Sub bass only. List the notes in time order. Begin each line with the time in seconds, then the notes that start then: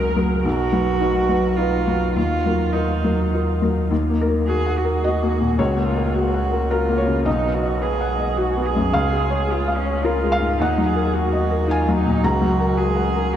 Already playing: C#2
0.45 B1
2.16 D#2
3.90 D#2
5.58 C#2
7.27 B1
8.93 C#2
10.59 D#2
12.24 C#2